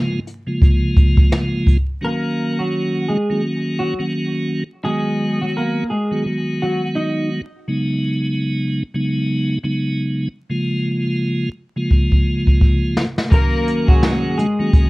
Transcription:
0.00 0.19 C#3 medium
0.00 0.19 F3 medium
0.00 0.20 G#3 medium
0.00 0.20 A#3 medium
0.00 0.20 F4 loud
0.27 closed hi-hat medium
0.47 0.61 C#3 loud
0.47 0.61 F3 medium
0.47 0.61 G#3 medium
0.47 0.62 A#3 medium
0.47 0.62 F4 medium
0.62 1.77 C#3 medium
0.62 1.77 F3 medium
0.62 1.77 G#3 medium
0.62 1.77 A#3 medium
0.62 1.78 F4 loud
0.62 kick loud
0.62 closed hi-hat medium
0.97 kick loud
0.97 closed hi-hat medium
1.17 kick loud
1.32 snare loud
1.32 closed hi-hat medium
1.67 kick medium
1.67 closed hi-hat medium
2.01 3.17 D#3 medium
2.01 3.17 F#3 medium
2.01 3.17 A#3 medium
2.01 3.17 C#4 medium
2.01 3.18 F#4 loud
2.01 2.57 A#4 medium
2.05 2.57 A#3 medium
2.59 3.06 F#3 medium
2.59 3.06 F#4 medium
3.09 3.41 G#3 medium
3.09 3.40 G#4 medium
3.30 3.94 D#3 medium
3.30 3.94 F#3 medium
3.30 3.94 A#3 medium
3.30 3.94 C#4 medium
3.30 3.94 F#4 loud
3.79 3.98 F#3 medium
3.79 3.98 F#4 medium
3.99 4.63 D#3 medium
3.99 4.63 F#3 medium
3.99 4.64 A#3 medium
3.99 4.64 C#4 medium
3.99 4.64 F#4 loud
4.84 5.83 D#3 medium
4.84 5.84 F#3 medium
4.84 5.84 G#3 medium
4.84 5.38 G#3 medium
4.84 5.84 B3 medium
4.84 5.84 F#4 loud
4.84 5.38 G#4 loud
5.41 5.54 F#3 medium
5.41 5.54 F#4 medium
5.57 5.88 A#3 medium
5.57 5.88 A#4 medium
5.90 6.23 G#3 medium
5.90 6.22 G#4 medium
6.11 6.24 D#3 medium
6.11 6.25 F#3 medium
6.11 6.25 G#3 medium
6.11 6.25 B3 medium
6.11 6.26 F#4 loud
6.26 7.41 D#3 medium
6.26 7.41 F#3 medium
6.26 7.41 G#3 medium
6.26 7.42 B3 medium
6.26 7.42 F#4 medium
6.62 6.81 F#3 medium
6.62 6.81 F#4 medium
6.95 7.28 D#4 medium
6.95 7.28 D#5 medium
7.68 8.83 C#3 medium
7.68 8.83 F#3 medium
7.68 8.83 G#3 medium
7.68 8.83 B3 medium
7.68 8.83 D#4 loud
8.94 9.58 C#3 medium
8.94 9.58 F#3 medium
8.94 9.58 G#3 medium
8.94 9.59 B3 medium
8.94 9.59 D#4 loud
9.63 10.28 C#3 medium
9.63 10.28 F#3 medium
9.63 10.28 G#3 medium
9.63 10.29 B3 medium
9.63 10.29 D#4 loud
10.49 11.49 C#3 medium
10.49 11.49 F3 medium
10.49 11.49 G#3 medium
10.49 11.49 A#3 medium
10.49 11.49 F4 loud
11.76 11.90 C#3 medium
11.76 11.90 F3 medium
11.76 11.91 G#3 medium
11.76 11.91 A#3 medium
11.76 11.92 F4 medium
11.91 13.06 C#3 medium
11.91 13.06 F3 medium
11.91 13.06 G#3 medium
11.91 13.07 A#3 medium
11.91 13.07 F4 loud
11.91 kick medium
12.12 kick medium
12.47 kick medium
12.61 kick medium
12.97 snare loud
13.18 snare medium
13.30 14.46 D#3 medium
13.30 14.46 F#3 medium
13.30 14.47 A#3 medium
13.30 13.60 A#3 loud
13.30 14.47 C#4 medium
13.30 14.47 F#4 loud
13.30 13.60 A#4 loud
13.30 13.86 A#4 loud
13.30 kick loud
13.30 closed hi-hat medium
13.35 13.86 A#3 medium
13.68 closed hi-hat medium
13.87 14.35 F#3 medium
13.87 14.34 G#3 medium
13.87 14.35 F#4 medium
13.87 14.34 G#4 loud
13.87 kick loud
14.03 snare loud
14.03 closed hi-hat medium
14.38 14.70 G#3 medium
14.38 14.70 G#4 medium
14.38 closed hi-hat medium
14.59 14.90 D#3 loud
14.59 14.90 F#3 medium
14.59 14.90 A#3 medium
14.59 14.90 C#4 medium
14.59 14.90 F#4 loud
14.73 14.90 G#3 medium
14.73 14.90 G#4 medium
14.73 kick loud
14.73 closed hi-hat loud

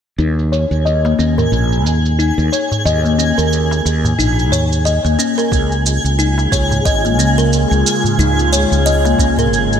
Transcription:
0.18 0.64 D#2 medium
0.18 0.37 D#4 medium
0.18 9.80 G#4 medium
0.18 9.80 G#5 medium
0.18 shaker soft
0.39 shaker soft
0.52 0.63 C#5 medium
0.52 shaker medium
0.71 1.13 D#2 medium
0.71 shaker soft
0.85 1.03 D#5 medium
0.85 shaker soft
1.05 1.18 A#3 medium
1.05 darbuka tek medium
1.05 shaker soft
1.19 1.46 D#2 medium
1.19 1.30 C#4 medium
1.19 darbuka ka soft
1.19 shaker medium
1.38 1.52 A#4 medium
1.38 darbuka dum medium
1.38 shaker soft
1.52 1.85 A#1 medium
1.52 shaker soft
1.72 shaker soft
1.84 2.31 D#2 medium
1.84 darbuka ka soft
1.84 darbuka tek soft
1.84 shaker medium
2.06 shaker soft
2.19 2.37 D#4 medium
2.19 shaker soft
2.38 2.49 D#2 medium
2.38 shaker soft
2.52 2.63 C#5 medium
2.52 shaker medium
2.71 darbuka dum medium
2.71 shaker soft
2.85 3.31 D#2 medium
2.85 3.03 D#5 medium
2.85 shaker soft
3.05 3.18 A#3 medium
3.05 shaker soft
3.18 3.30 C#4 medium
3.18 shaker medium
3.38 3.80 D#2 medium
3.38 3.51 A#4 medium
3.38 shaker soft
3.53 shaker soft
3.71 darbuka tek medium
3.71 shaker soft
3.85 4.12 D#2 medium
3.85 darbuka ka soft
3.85 shaker medium
4.04 darbuka tek soft
4.04 darbuka dum medium
4.04 shaker soft
4.19 4.52 A#1 medium
4.19 4.37 D#4 medium
4.19 shaker soft
4.39 shaker soft
4.51 4.97 D#2 medium
4.51 4.63 C#5 medium
4.51 darbuka ka soft
4.51 darbuka tek soft
4.51 darbuka dum medium
4.51 shaker medium
4.72 shaker soft
4.85 5.03 D#5 medium
4.85 shaker soft
5.05 5.16 D#2 medium
5.05 5.18 A#3 medium
5.05 shaker soft
5.19 5.30 C#4 medium
5.19 shaker medium
5.38 5.51 A#4 medium
5.38 darbuka ka medium
5.38 shaker soft
5.52 5.97 C#2 medium
5.52 9.80 C#3 medium
5.52 9.80 G#3 medium
5.52 9.80 F4 medium
5.52 kick loud
5.52 shaker soft
5.72 shaker soft
5.86 shaker medium
6.04 6.47 C#2 medium
6.04 shaker soft
6.19 6.37 D#4 medium
6.19 shaker soft
6.38 darbuka tek medium
6.38 shaker soft
6.52 6.79 C#2 medium
6.52 6.63 C#5 medium
6.52 kick loud
6.52 darbuka ka soft
6.52 shaker medium
6.71 darbuka dum medium
6.71 shaker soft
6.85 7.19 G#1 medium
6.85 7.03 D#5 medium
6.85 kick loud
6.85 shaker soft
7.05 7.18 A#3 medium
7.05 shaker soft
7.18 7.64 C#2 medium
7.18 7.30 C#4 medium
7.18 darbuka ka soft
7.18 darbuka tek soft
7.18 shaker medium
7.38 7.52 A#4 medium
7.38 shaker soft
7.53 shaker soft
7.71 7.82 C#2 medium
7.71 shaker soft
7.86 shaker medium
8.04 darbuka dum medium
8.04 shaker soft
8.19 8.64 C#2 medium
8.19 8.37 D#4 medium
8.19 shaker soft
8.39 shaker soft
8.53 8.63 C#5 medium
8.53 shaker medium
8.72 9.14 C#2 medium
8.72 shaker soft
8.86 9.03 D#5 medium
8.86 shaker soft
9.05 9.19 A#3 medium
9.05 darbuka tek medium
9.05 shaker soft
9.19 9.52 C#2 medium
9.19 9.30 C#4 medium
9.19 kick medium
9.19 darbuka ka soft
9.19 shaker medium
9.37 9.52 A#4 medium
9.37 darbuka tek soft
9.37 darbuka dum medium
9.37 shaker soft
9.52 9.80 G#1 medium
9.52 swell medium
9.52 shaker soft
9.73 shaker soft

